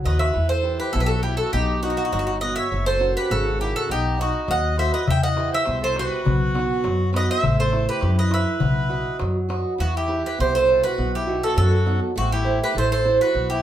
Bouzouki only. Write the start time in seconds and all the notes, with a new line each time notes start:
0.06 D#5
0.19 E5
0.49 C5
0.80 B4
0.93 A4
1.00 B4
1.06 A4
1.23 G4
1.37 A4
1.53 G4
1.83 F#4
1.90 F#4
1.97 F#4
2.05 F#4
2.13 F#4
2.19 F#4
2.27 F#4
2.41 D#5
2.56 E5
2.86 C5
3.17 B4
3.31 A4
3.61 G4
3.76 A4
3.91 G4
4.21 F#4
4.51 F#5
4.79 E5
4.94 D#5
5.10 G5
5.23 F#5
5.54 E5
5.84 C5
5.99 B4
7.16 D#5
7.31 E5
7.60 C5
7.89 B4
8.19 D#5
8.34 E5
9.80 F#4
9.97 G4
10.26 B4
10.40 C5
10.55 C5
10.84 B4
11.15 G4
11.44 A4
11.58 A4
12.18 F#4
12.32 G4
12.64 B4
12.78 C5
12.92 C5
13.21 B4
13.50 G4